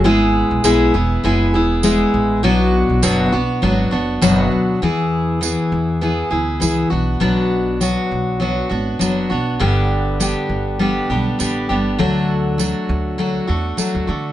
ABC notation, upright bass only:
X:1
M:4/4
L:1/16
Q:"Swing 16ths" 1/4=100
K:Emix
V:1 name="Upright bass" clef=bass
G,,,3 B,,, B,,,2 E,,,2 F,,,2 E,,,4 A,,,2 | B,,,3 B,,, F,,,2 B,,,2 G,,,2 F,,,2 F,,,2 z2 | E,,4- E,, z E,,4 D,,2 C,,2 B,,,2 | B,,,4- B,,, z B,,,4 G,,,2 F,,,2 B,,,2 |
=G,,,4- G,,, z G,,,4 B,,,2 A,,,2 G,,,2 | D,,4- D,, z D,,4 E,,2 z D,, D,2 |]